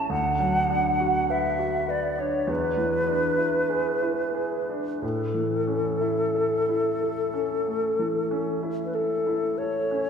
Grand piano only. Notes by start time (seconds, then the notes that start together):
Already playing: C#4 E4 A4 C#5
0.10 D2
0.39 F#3
0.70 D4
1.00 F#4
1.30 B4
1.59 F#4
1.88 B4
2.18 D4
2.47 E2
2.77 E3
3.07 D4
3.38 E4
3.70 G#4
4.02 E4
4.35 G#4
4.69 D4
5.02 A2
5.34 E3
5.67 C#4
6.01 E4
6.35 A4
6.69 E4
7.02 A4
7.33 C#4
7.67 A3
7.99 E3
8.31 C#4
8.63 E4
8.94 A4
9.27 E4
9.60 A4
9.91 C#4